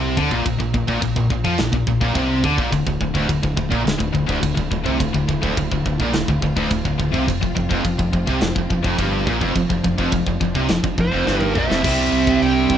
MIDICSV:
0, 0, Header, 1, 7, 480
1, 0, Start_track
1, 0, Key_signature, -1, "minor"
1, 0, Tempo, 569260
1, 383, Time_signature, 4, 2, 24, 8
1, 10774, End_track
2, 0, Start_track
2, 0, Title_t, "Lead electric guitar"
2, 0, Program_c, 0, 29
2, 9283, Note_on_c, 0, 72, 91
2, 9720, Note_off_c, 0, 72, 0
2, 9768, Note_on_c, 0, 76, 94
2, 10473, Note_on_c, 0, 79, 83
2, 10498, Note_off_c, 0, 76, 0
2, 10774, Note_off_c, 0, 79, 0
2, 10774, End_track
3, 0, Start_track
3, 0, Title_t, "Lead electric guitar"
3, 0, Program_c, 1, 29
3, 9298, Note_on_c, 1, 65, 76
3, 9635, Note_off_c, 1, 65, 0
3, 9635, Note_on_c, 1, 63, 76
3, 9729, Note_off_c, 1, 63, 0
3, 9763, Note_on_c, 1, 72, 74
3, 10441, Note_off_c, 1, 72, 0
3, 10513, Note_on_c, 1, 76, 74
3, 10774, Note_off_c, 1, 76, 0
3, 10774, End_track
4, 0, Start_track
4, 0, Title_t, "String section"
4, 0, Program_c, 2, 48
4, 2286, Note_on_c, 2, 64, 71
4, 2292, Note_on_c, 2, 57, 64
4, 2298, Note_on_c, 2, 50, 75
4, 2299, Note_on_c, 2, 65, 80
4, 6096, Note_off_c, 2, 64, 0
4, 6099, Note_off_c, 2, 57, 0
4, 6102, Note_off_c, 2, 50, 0
4, 6140, Note_on_c, 2, 60, 72
4, 6149, Note_on_c, 2, 53, 78
4, 8041, Note_off_c, 2, 60, 0
4, 8055, Note_on_c, 2, 62, 67
4, 9949, Note_off_c, 2, 65, 0
4, 9955, Note_off_c, 2, 53, 0
4, 9962, Note_off_c, 2, 62, 0
4, 9996, Note_on_c, 2, 55, 70
4, 10009, Note_on_c, 2, 62, 68
4, 10010, Note_on_c, 2, 48, 73
4, 10013, Note_on_c, 2, 67, 80
4, 10774, Note_off_c, 2, 48, 0
4, 10774, Note_off_c, 2, 55, 0
4, 10774, Note_off_c, 2, 62, 0
4, 10774, Note_off_c, 2, 67, 0
4, 10774, End_track
5, 0, Start_track
5, 0, Title_t, "Distorted electric guitar"
5, 0, Program_c, 3, 30
5, 0, Note_on_c, 3, 48, 104
5, 131, Note_off_c, 3, 48, 0
5, 140, Note_on_c, 3, 50, 112
5, 254, Note_off_c, 3, 50, 0
5, 263, Note_on_c, 3, 46, 100
5, 372, Note_off_c, 3, 46, 0
5, 382, Note_on_c, 3, 46, 69
5, 485, Note_off_c, 3, 46, 0
5, 495, Note_on_c, 3, 46, 72
5, 611, Note_off_c, 3, 46, 0
5, 621, Note_on_c, 3, 46, 73
5, 732, Note_off_c, 3, 46, 0
5, 742, Note_on_c, 3, 46, 92
5, 840, Note_off_c, 3, 46, 0
5, 850, Note_on_c, 3, 46, 69
5, 970, Note_off_c, 3, 46, 0
5, 980, Note_on_c, 3, 46, 71
5, 1090, Note_off_c, 3, 46, 0
5, 1100, Note_on_c, 3, 46, 73
5, 1221, Note_off_c, 3, 46, 0
5, 1221, Note_on_c, 3, 53, 99
5, 1334, Note_off_c, 3, 53, 0
5, 1338, Note_on_c, 3, 46, 69
5, 1455, Note_off_c, 3, 46, 0
5, 1465, Note_on_c, 3, 46, 74
5, 1571, Note_off_c, 3, 46, 0
5, 1581, Note_on_c, 3, 46, 65
5, 1683, Note_off_c, 3, 46, 0
5, 1693, Note_on_c, 3, 46, 96
5, 1803, Note_off_c, 3, 46, 0
5, 1807, Note_on_c, 3, 48, 97
5, 2046, Note_off_c, 3, 48, 0
5, 2057, Note_on_c, 3, 50, 100
5, 2171, Note_off_c, 3, 50, 0
5, 2176, Note_on_c, 3, 46, 98
5, 2289, Note_off_c, 3, 46, 0
5, 2292, Note_on_c, 3, 38, 61
5, 2407, Note_off_c, 3, 38, 0
5, 2417, Note_on_c, 3, 38, 64
5, 2531, Note_off_c, 3, 38, 0
5, 2541, Note_on_c, 3, 38, 74
5, 2637, Note_off_c, 3, 38, 0
5, 2647, Note_on_c, 3, 38, 93
5, 2766, Note_off_c, 3, 38, 0
5, 2775, Note_on_c, 3, 38, 70
5, 2881, Note_off_c, 3, 38, 0
5, 2891, Note_on_c, 3, 38, 67
5, 2998, Note_off_c, 3, 38, 0
5, 3009, Note_on_c, 3, 38, 75
5, 3123, Note_off_c, 3, 38, 0
5, 3126, Note_on_c, 3, 46, 96
5, 3242, Note_off_c, 3, 46, 0
5, 3245, Note_on_c, 3, 38, 71
5, 3349, Note_off_c, 3, 38, 0
5, 3360, Note_on_c, 3, 38, 77
5, 3469, Note_off_c, 3, 38, 0
5, 3479, Note_on_c, 3, 38, 74
5, 3586, Note_off_c, 3, 38, 0
5, 3596, Note_on_c, 3, 38, 105
5, 3706, Note_off_c, 3, 38, 0
5, 3716, Note_on_c, 3, 38, 70
5, 3823, Note_off_c, 3, 38, 0
5, 3833, Note_on_c, 3, 38, 72
5, 3958, Note_off_c, 3, 38, 0
5, 3968, Note_on_c, 3, 38, 72
5, 4075, Note_off_c, 3, 38, 0
5, 4078, Note_on_c, 3, 48, 101
5, 4201, Note_off_c, 3, 48, 0
5, 4211, Note_on_c, 3, 38, 65
5, 4315, Note_off_c, 3, 38, 0
5, 4325, Note_on_c, 3, 38, 72
5, 4442, Note_off_c, 3, 38, 0
5, 4452, Note_on_c, 3, 38, 76
5, 4564, Note_off_c, 3, 38, 0
5, 4574, Note_on_c, 3, 38, 90
5, 4688, Note_off_c, 3, 38, 0
5, 4701, Note_on_c, 3, 38, 69
5, 4811, Note_off_c, 3, 38, 0
5, 4821, Note_on_c, 3, 38, 70
5, 4930, Note_off_c, 3, 38, 0
5, 4940, Note_on_c, 3, 38, 80
5, 5059, Note_off_c, 3, 38, 0
5, 5068, Note_on_c, 3, 46, 104
5, 5174, Note_off_c, 3, 46, 0
5, 5178, Note_on_c, 3, 38, 71
5, 5292, Note_off_c, 3, 38, 0
5, 5302, Note_on_c, 3, 38, 76
5, 5408, Note_off_c, 3, 38, 0
5, 5419, Note_on_c, 3, 38, 71
5, 5531, Note_off_c, 3, 38, 0
5, 5541, Note_on_c, 3, 38, 101
5, 5644, Note_off_c, 3, 38, 0
5, 5654, Note_on_c, 3, 38, 73
5, 5766, Note_off_c, 3, 38, 0
5, 5776, Note_on_c, 3, 38, 78
5, 5875, Note_off_c, 3, 38, 0
5, 5885, Note_on_c, 3, 38, 78
5, 5999, Note_off_c, 3, 38, 0
5, 6002, Note_on_c, 3, 48, 99
5, 6122, Note_off_c, 3, 48, 0
5, 6134, Note_on_c, 3, 41, 62
5, 6239, Note_off_c, 3, 41, 0
5, 6249, Note_on_c, 3, 41, 70
5, 6356, Note_off_c, 3, 41, 0
5, 6366, Note_on_c, 3, 41, 76
5, 6476, Note_off_c, 3, 41, 0
5, 6486, Note_on_c, 3, 41, 102
5, 6599, Note_off_c, 3, 41, 0
5, 6609, Note_on_c, 3, 41, 76
5, 6723, Note_off_c, 3, 41, 0
5, 6733, Note_on_c, 3, 41, 75
5, 6843, Note_off_c, 3, 41, 0
5, 6853, Note_on_c, 3, 41, 73
5, 6971, Note_off_c, 3, 41, 0
5, 6974, Note_on_c, 3, 48, 99
5, 7089, Note_off_c, 3, 48, 0
5, 7097, Note_on_c, 3, 41, 71
5, 7201, Note_off_c, 3, 41, 0
5, 7211, Note_on_c, 3, 41, 77
5, 7325, Note_off_c, 3, 41, 0
5, 7336, Note_on_c, 3, 41, 75
5, 7431, Note_off_c, 3, 41, 0
5, 7441, Note_on_c, 3, 41, 103
5, 7563, Note_off_c, 3, 41, 0
5, 7573, Note_on_c, 3, 43, 93
5, 7809, Note_off_c, 3, 43, 0
5, 7813, Note_on_c, 3, 46, 110
5, 7925, Note_off_c, 3, 46, 0
5, 7928, Note_on_c, 3, 41, 97
5, 8043, Note_off_c, 3, 41, 0
5, 8053, Note_on_c, 3, 41, 68
5, 8164, Note_off_c, 3, 41, 0
5, 8174, Note_on_c, 3, 41, 66
5, 8285, Note_off_c, 3, 41, 0
5, 8295, Note_on_c, 3, 41, 75
5, 8406, Note_off_c, 3, 41, 0
5, 8416, Note_on_c, 3, 41, 90
5, 8528, Note_off_c, 3, 41, 0
5, 8538, Note_on_c, 3, 41, 68
5, 8652, Note_off_c, 3, 41, 0
5, 8662, Note_on_c, 3, 41, 72
5, 8764, Note_off_c, 3, 41, 0
5, 8774, Note_on_c, 3, 41, 70
5, 8897, Note_off_c, 3, 41, 0
5, 8902, Note_on_c, 3, 48, 97
5, 9014, Note_off_c, 3, 48, 0
5, 9024, Note_on_c, 3, 41, 70
5, 9128, Note_off_c, 3, 41, 0
5, 9138, Note_on_c, 3, 41, 73
5, 9250, Note_off_c, 3, 41, 0
5, 9260, Note_on_c, 3, 41, 68
5, 9361, Note_off_c, 3, 41, 0
5, 9372, Note_on_c, 3, 41, 102
5, 9486, Note_off_c, 3, 41, 0
5, 9490, Note_on_c, 3, 43, 104
5, 9729, Note_off_c, 3, 43, 0
5, 9735, Note_on_c, 3, 46, 105
5, 9852, Note_off_c, 3, 46, 0
5, 9858, Note_on_c, 3, 41, 89
5, 9972, Note_off_c, 3, 41, 0
5, 9975, Note_on_c, 3, 48, 80
5, 9988, Note_on_c, 3, 55, 84
5, 10003, Note_on_c, 3, 60, 95
5, 10774, Note_off_c, 3, 48, 0
5, 10774, Note_off_c, 3, 55, 0
5, 10774, Note_off_c, 3, 60, 0
5, 10774, End_track
6, 0, Start_track
6, 0, Title_t, "Fingered electric bass"
6, 0, Program_c, 4, 33
6, 0, Note_on_c, 4, 36, 96
6, 130, Note_off_c, 4, 36, 0
6, 148, Note_on_c, 4, 38, 95
6, 257, Note_off_c, 4, 38, 0
6, 266, Note_on_c, 4, 34, 87
6, 376, Note_off_c, 4, 34, 0
6, 389, Note_on_c, 4, 34, 74
6, 497, Note_off_c, 4, 34, 0
6, 503, Note_on_c, 4, 34, 81
6, 615, Note_off_c, 4, 34, 0
6, 632, Note_on_c, 4, 34, 81
6, 739, Note_off_c, 4, 34, 0
6, 745, Note_on_c, 4, 34, 88
6, 855, Note_off_c, 4, 34, 0
6, 860, Note_on_c, 4, 34, 78
6, 972, Note_off_c, 4, 34, 0
6, 982, Note_on_c, 4, 34, 87
6, 1093, Note_off_c, 4, 34, 0
6, 1101, Note_on_c, 4, 34, 86
6, 1213, Note_off_c, 4, 34, 0
6, 1223, Note_on_c, 4, 41, 95
6, 1334, Note_off_c, 4, 41, 0
6, 1350, Note_on_c, 4, 34, 82
6, 1457, Note_off_c, 4, 34, 0
6, 1461, Note_on_c, 4, 34, 75
6, 1573, Note_off_c, 4, 34, 0
6, 1578, Note_on_c, 4, 34, 80
6, 1691, Note_off_c, 4, 34, 0
6, 1701, Note_on_c, 4, 34, 90
6, 1812, Note_off_c, 4, 34, 0
6, 1819, Note_on_c, 4, 36, 95
6, 2043, Note_off_c, 4, 36, 0
6, 2058, Note_on_c, 4, 38, 86
6, 2170, Note_off_c, 4, 38, 0
6, 2184, Note_on_c, 4, 34, 95
6, 2294, Note_off_c, 4, 34, 0
6, 2298, Note_on_c, 4, 26, 78
6, 2410, Note_off_c, 4, 26, 0
6, 2416, Note_on_c, 4, 26, 78
6, 2529, Note_off_c, 4, 26, 0
6, 2535, Note_on_c, 4, 26, 83
6, 2649, Note_off_c, 4, 26, 0
6, 2660, Note_on_c, 4, 26, 90
6, 2771, Note_off_c, 4, 26, 0
6, 2782, Note_on_c, 4, 26, 75
6, 2889, Note_off_c, 4, 26, 0
6, 2894, Note_on_c, 4, 26, 91
6, 3008, Note_off_c, 4, 26, 0
6, 3016, Note_on_c, 4, 26, 84
6, 3129, Note_off_c, 4, 26, 0
6, 3139, Note_on_c, 4, 34, 98
6, 3250, Note_off_c, 4, 34, 0
6, 3266, Note_on_c, 4, 26, 80
6, 3374, Note_off_c, 4, 26, 0
6, 3377, Note_on_c, 4, 26, 77
6, 3489, Note_off_c, 4, 26, 0
6, 3501, Note_on_c, 4, 26, 81
6, 3611, Note_off_c, 4, 26, 0
6, 3620, Note_on_c, 4, 26, 92
6, 3730, Note_off_c, 4, 26, 0
6, 3736, Note_on_c, 4, 26, 79
6, 3849, Note_off_c, 4, 26, 0
6, 3856, Note_on_c, 4, 26, 76
6, 3968, Note_off_c, 4, 26, 0
6, 3980, Note_on_c, 4, 26, 78
6, 4090, Note_off_c, 4, 26, 0
6, 4096, Note_on_c, 4, 36, 94
6, 4208, Note_off_c, 4, 36, 0
6, 4218, Note_on_c, 4, 26, 78
6, 4329, Note_off_c, 4, 26, 0
6, 4339, Note_on_c, 4, 26, 82
6, 4450, Note_off_c, 4, 26, 0
6, 4463, Note_on_c, 4, 26, 86
6, 4572, Note_off_c, 4, 26, 0
6, 4578, Note_on_c, 4, 26, 93
6, 4689, Note_off_c, 4, 26, 0
6, 4705, Note_on_c, 4, 26, 77
6, 4813, Note_off_c, 4, 26, 0
6, 4819, Note_on_c, 4, 26, 86
6, 4930, Note_off_c, 4, 26, 0
6, 4940, Note_on_c, 4, 26, 89
6, 5050, Note_off_c, 4, 26, 0
6, 5061, Note_on_c, 4, 34, 101
6, 5171, Note_off_c, 4, 34, 0
6, 5193, Note_on_c, 4, 26, 84
6, 5291, Note_off_c, 4, 26, 0
6, 5296, Note_on_c, 4, 26, 78
6, 5408, Note_off_c, 4, 26, 0
6, 5417, Note_on_c, 4, 26, 88
6, 5529, Note_off_c, 4, 26, 0
6, 5542, Note_on_c, 4, 26, 94
6, 5651, Note_off_c, 4, 26, 0
6, 5661, Note_on_c, 4, 26, 84
6, 5771, Note_off_c, 4, 26, 0
6, 5780, Note_on_c, 4, 26, 75
6, 5890, Note_off_c, 4, 26, 0
6, 5901, Note_on_c, 4, 26, 77
6, 6011, Note_off_c, 4, 26, 0
6, 6023, Note_on_c, 4, 36, 94
6, 6132, Note_off_c, 4, 36, 0
6, 6147, Note_on_c, 4, 29, 78
6, 6254, Note_off_c, 4, 29, 0
6, 6265, Note_on_c, 4, 29, 86
6, 6373, Note_off_c, 4, 29, 0
6, 6378, Note_on_c, 4, 29, 86
6, 6489, Note_off_c, 4, 29, 0
6, 6503, Note_on_c, 4, 29, 97
6, 6612, Note_off_c, 4, 29, 0
6, 6621, Note_on_c, 4, 29, 74
6, 6731, Note_off_c, 4, 29, 0
6, 6744, Note_on_c, 4, 29, 88
6, 6852, Note_off_c, 4, 29, 0
6, 6863, Note_on_c, 4, 29, 85
6, 6969, Note_off_c, 4, 29, 0
6, 6974, Note_on_c, 4, 36, 103
6, 7088, Note_off_c, 4, 36, 0
6, 7099, Note_on_c, 4, 29, 80
6, 7210, Note_off_c, 4, 29, 0
6, 7220, Note_on_c, 4, 29, 73
6, 7330, Note_off_c, 4, 29, 0
6, 7343, Note_on_c, 4, 29, 84
6, 7453, Note_off_c, 4, 29, 0
6, 7458, Note_on_c, 4, 29, 100
6, 7570, Note_off_c, 4, 29, 0
6, 7584, Note_on_c, 4, 31, 103
6, 7805, Note_off_c, 4, 31, 0
6, 7818, Note_on_c, 4, 34, 97
6, 7930, Note_off_c, 4, 34, 0
6, 7935, Note_on_c, 4, 29, 101
6, 8049, Note_off_c, 4, 29, 0
6, 8062, Note_on_c, 4, 29, 77
6, 8172, Note_off_c, 4, 29, 0
6, 8180, Note_on_c, 4, 29, 79
6, 8292, Note_off_c, 4, 29, 0
6, 8300, Note_on_c, 4, 29, 85
6, 8412, Note_off_c, 4, 29, 0
6, 8420, Note_on_c, 4, 29, 95
6, 8531, Note_off_c, 4, 29, 0
6, 8539, Note_on_c, 4, 29, 80
6, 8651, Note_off_c, 4, 29, 0
6, 8656, Note_on_c, 4, 29, 86
6, 8770, Note_off_c, 4, 29, 0
6, 8778, Note_on_c, 4, 29, 80
6, 8891, Note_off_c, 4, 29, 0
6, 8900, Note_on_c, 4, 36, 93
6, 9012, Note_off_c, 4, 36, 0
6, 9024, Note_on_c, 4, 29, 83
6, 9132, Note_off_c, 4, 29, 0
6, 9137, Note_on_c, 4, 29, 79
6, 9250, Note_off_c, 4, 29, 0
6, 9263, Note_on_c, 4, 29, 80
6, 9374, Note_off_c, 4, 29, 0
6, 9391, Note_on_c, 4, 29, 93
6, 9498, Note_off_c, 4, 29, 0
6, 9507, Note_on_c, 4, 31, 100
6, 9728, Note_off_c, 4, 31, 0
6, 9744, Note_on_c, 4, 34, 93
6, 9855, Note_off_c, 4, 34, 0
6, 9867, Note_on_c, 4, 29, 92
6, 9977, Note_off_c, 4, 29, 0
6, 9987, Note_on_c, 4, 36, 90
6, 10216, Note_off_c, 4, 36, 0
6, 10225, Note_on_c, 4, 36, 89
6, 10455, Note_off_c, 4, 36, 0
6, 10474, Note_on_c, 4, 36, 85
6, 10700, Note_off_c, 4, 36, 0
6, 10711, Note_on_c, 4, 36, 96
6, 10774, Note_off_c, 4, 36, 0
6, 10774, End_track
7, 0, Start_track
7, 0, Title_t, "Drums"
7, 145, Note_on_c, 9, 36, 111
7, 229, Note_off_c, 9, 36, 0
7, 264, Note_on_c, 9, 36, 80
7, 348, Note_off_c, 9, 36, 0
7, 386, Note_on_c, 9, 36, 89
7, 386, Note_on_c, 9, 49, 63
7, 470, Note_off_c, 9, 36, 0
7, 471, Note_off_c, 9, 49, 0
7, 506, Note_on_c, 9, 36, 81
7, 590, Note_off_c, 9, 36, 0
7, 625, Note_on_c, 9, 36, 83
7, 709, Note_off_c, 9, 36, 0
7, 743, Note_on_c, 9, 36, 82
7, 828, Note_off_c, 9, 36, 0
7, 858, Note_on_c, 9, 49, 64
7, 861, Note_on_c, 9, 36, 91
7, 943, Note_off_c, 9, 49, 0
7, 945, Note_off_c, 9, 36, 0
7, 980, Note_on_c, 9, 36, 90
7, 1064, Note_off_c, 9, 36, 0
7, 1099, Note_on_c, 9, 36, 86
7, 1183, Note_off_c, 9, 36, 0
7, 1219, Note_on_c, 9, 36, 81
7, 1304, Note_off_c, 9, 36, 0
7, 1331, Note_on_c, 9, 49, 58
7, 1339, Note_on_c, 9, 38, 99
7, 1416, Note_off_c, 9, 49, 0
7, 1423, Note_off_c, 9, 38, 0
7, 1458, Note_on_c, 9, 36, 91
7, 1542, Note_off_c, 9, 36, 0
7, 1577, Note_on_c, 9, 36, 85
7, 1661, Note_off_c, 9, 36, 0
7, 1696, Note_on_c, 9, 36, 84
7, 1780, Note_off_c, 9, 36, 0
7, 1811, Note_on_c, 9, 49, 55
7, 1815, Note_on_c, 9, 36, 95
7, 1896, Note_off_c, 9, 49, 0
7, 1899, Note_off_c, 9, 36, 0
7, 2056, Note_on_c, 9, 36, 106
7, 2140, Note_off_c, 9, 36, 0
7, 2177, Note_on_c, 9, 36, 78
7, 2262, Note_off_c, 9, 36, 0
7, 2297, Note_on_c, 9, 36, 86
7, 2302, Note_on_c, 9, 49, 61
7, 2382, Note_off_c, 9, 36, 0
7, 2386, Note_off_c, 9, 49, 0
7, 2417, Note_on_c, 9, 36, 82
7, 2501, Note_off_c, 9, 36, 0
7, 2535, Note_on_c, 9, 36, 79
7, 2619, Note_off_c, 9, 36, 0
7, 2655, Note_on_c, 9, 36, 86
7, 2740, Note_off_c, 9, 36, 0
7, 2776, Note_on_c, 9, 36, 90
7, 2780, Note_on_c, 9, 49, 58
7, 2860, Note_off_c, 9, 36, 0
7, 2865, Note_off_c, 9, 49, 0
7, 2895, Note_on_c, 9, 36, 85
7, 2979, Note_off_c, 9, 36, 0
7, 3013, Note_on_c, 9, 36, 92
7, 3097, Note_off_c, 9, 36, 0
7, 3134, Note_on_c, 9, 36, 76
7, 3219, Note_off_c, 9, 36, 0
7, 3263, Note_on_c, 9, 49, 61
7, 3270, Note_on_c, 9, 38, 113
7, 3347, Note_off_c, 9, 49, 0
7, 3354, Note_off_c, 9, 38, 0
7, 3375, Note_on_c, 9, 36, 87
7, 3460, Note_off_c, 9, 36, 0
7, 3497, Note_on_c, 9, 36, 79
7, 3581, Note_off_c, 9, 36, 0
7, 3617, Note_on_c, 9, 36, 81
7, 3701, Note_off_c, 9, 36, 0
7, 3735, Note_on_c, 9, 36, 101
7, 3737, Note_on_c, 9, 49, 63
7, 3819, Note_off_c, 9, 36, 0
7, 3821, Note_off_c, 9, 49, 0
7, 3856, Note_on_c, 9, 36, 85
7, 3941, Note_off_c, 9, 36, 0
7, 3976, Note_on_c, 9, 36, 92
7, 4061, Note_off_c, 9, 36, 0
7, 4097, Note_on_c, 9, 36, 79
7, 4181, Note_off_c, 9, 36, 0
7, 4218, Note_on_c, 9, 36, 88
7, 4223, Note_on_c, 9, 49, 62
7, 4302, Note_off_c, 9, 36, 0
7, 4307, Note_off_c, 9, 49, 0
7, 4338, Note_on_c, 9, 36, 81
7, 4422, Note_off_c, 9, 36, 0
7, 4458, Note_on_c, 9, 36, 83
7, 4542, Note_off_c, 9, 36, 0
7, 4579, Note_on_c, 9, 36, 84
7, 4663, Note_off_c, 9, 36, 0
7, 4699, Note_on_c, 9, 36, 91
7, 4700, Note_on_c, 9, 49, 69
7, 4784, Note_off_c, 9, 36, 0
7, 4784, Note_off_c, 9, 49, 0
7, 4819, Note_on_c, 9, 36, 83
7, 4903, Note_off_c, 9, 36, 0
7, 4939, Note_on_c, 9, 36, 90
7, 5023, Note_off_c, 9, 36, 0
7, 5057, Note_on_c, 9, 36, 82
7, 5141, Note_off_c, 9, 36, 0
7, 5171, Note_on_c, 9, 49, 59
7, 5179, Note_on_c, 9, 38, 108
7, 5255, Note_off_c, 9, 49, 0
7, 5263, Note_off_c, 9, 38, 0
7, 5298, Note_on_c, 9, 36, 97
7, 5382, Note_off_c, 9, 36, 0
7, 5416, Note_on_c, 9, 36, 85
7, 5500, Note_off_c, 9, 36, 0
7, 5537, Note_on_c, 9, 36, 89
7, 5621, Note_off_c, 9, 36, 0
7, 5653, Note_on_c, 9, 49, 64
7, 5657, Note_on_c, 9, 36, 93
7, 5737, Note_off_c, 9, 49, 0
7, 5742, Note_off_c, 9, 36, 0
7, 5777, Note_on_c, 9, 36, 79
7, 5862, Note_off_c, 9, 36, 0
7, 5898, Note_on_c, 9, 36, 91
7, 5982, Note_off_c, 9, 36, 0
7, 6021, Note_on_c, 9, 36, 81
7, 6105, Note_off_c, 9, 36, 0
7, 6142, Note_on_c, 9, 36, 88
7, 6152, Note_on_c, 9, 49, 63
7, 6226, Note_off_c, 9, 36, 0
7, 6236, Note_off_c, 9, 49, 0
7, 6263, Note_on_c, 9, 36, 76
7, 6347, Note_off_c, 9, 36, 0
7, 6380, Note_on_c, 9, 36, 76
7, 6465, Note_off_c, 9, 36, 0
7, 6498, Note_on_c, 9, 36, 81
7, 6583, Note_off_c, 9, 36, 0
7, 6616, Note_on_c, 9, 36, 98
7, 6617, Note_on_c, 9, 49, 59
7, 6701, Note_off_c, 9, 36, 0
7, 6701, Note_off_c, 9, 49, 0
7, 6738, Note_on_c, 9, 36, 90
7, 6823, Note_off_c, 9, 36, 0
7, 6857, Note_on_c, 9, 36, 86
7, 6942, Note_off_c, 9, 36, 0
7, 6977, Note_on_c, 9, 36, 81
7, 7061, Note_off_c, 9, 36, 0
7, 7091, Note_on_c, 9, 49, 59
7, 7098, Note_on_c, 9, 38, 115
7, 7175, Note_off_c, 9, 49, 0
7, 7183, Note_off_c, 9, 38, 0
7, 7217, Note_on_c, 9, 36, 90
7, 7301, Note_off_c, 9, 36, 0
7, 7339, Note_on_c, 9, 36, 86
7, 7423, Note_off_c, 9, 36, 0
7, 7457, Note_on_c, 9, 36, 85
7, 7541, Note_off_c, 9, 36, 0
7, 7577, Note_on_c, 9, 36, 101
7, 7578, Note_on_c, 9, 49, 63
7, 7661, Note_off_c, 9, 36, 0
7, 7663, Note_off_c, 9, 49, 0
7, 7816, Note_on_c, 9, 36, 112
7, 7900, Note_off_c, 9, 36, 0
7, 7938, Note_on_c, 9, 36, 83
7, 8022, Note_off_c, 9, 36, 0
7, 8057, Note_on_c, 9, 36, 90
7, 8057, Note_on_c, 9, 49, 65
7, 8142, Note_off_c, 9, 36, 0
7, 8142, Note_off_c, 9, 49, 0
7, 8180, Note_on_c, 9, 36, 86
7, 8264, Note_off_c, 9, 36, 0
7, 8300, Note_on_c, 9, 36, 78
7, 8385, Note_off_c, 9, 36, 0
7, 8418, Note_on_c, 9, 36, 81
7, 8503, Note_off_c, 9, 36, 0
7, 8531, Note_on_c, 9, 49, 62
7, 8537, Note_on_c, 9, 36, 96
7, 8615, Note_off_c, 9, 49, 0
7, 8621, Note_off_c, 9, 36, 0
7, 8655, Note_on_c, 9, 36, 90
7, 8740, Note_off_c, 9, 36, 0
7, 8776, Note_on_c, 9, 36, 85
7, 8861, Note_off_c, 9, 36, 0
7, 8897, Note_on_c, 9, 36, 81
7, 8981, Note_off_c, 9, 36, 0
7, 9010, Note_on_c, 9, 49, 63
7, 9017, Note_on_c, 9, 38, 105
7, 9094, Note_off_c, 9, 49, 0
7, 9102, Note_off_c, 9, 38, 0
7, 9138, Note_on_c, 9, 36, 89
7, 9223, Note_off_c, 9, 36, 0
7, 9258, Note_on_c, 9, 36, 82
7, 9342, Note_off_c, 9, 36, 0
7, 9505, Note_on_c, 9, 38, 66
7, 9589, Note_off_c, 9, 38, 0
7, 9618, Note_on_c, 9, 47, 68
7, 9702, Note_off_c, 9, 47, 0
7, 9742, Note_on_c, 9, 45, 92
7, 9826, Note_off_c, 9, 45, 0
7, 9878, Note_on_c, 9, 38, 89
7, 9962, Note_off_c, 9, 38, 0
7, 9987, Note_on_c, 9, 36, 108
7, 9990, Note_on_c, 9, 52, 62
7, 9990, Note_on_c, 9, 57, 116
7, 10071, Note_off_c, 9, 36, 0
7, 10074, Note_off_c, 9, 52, 0
7, 10074, Note_off_c, 9, 57, 0
7, 10348, Note_on_c, 9, 36, 83
7, 10433, Note_off_c, 9, 36, 0
7, 10476, Note_on_c, 9, 52, 60
7, 10560, Note_off_c, 9, 52, 0
7, 10707, Note_on_c, 9, 36, 86
7, 10774, Note_off_c, 9, 36, 0
7, 10774, End_track
0, 0, End_of_file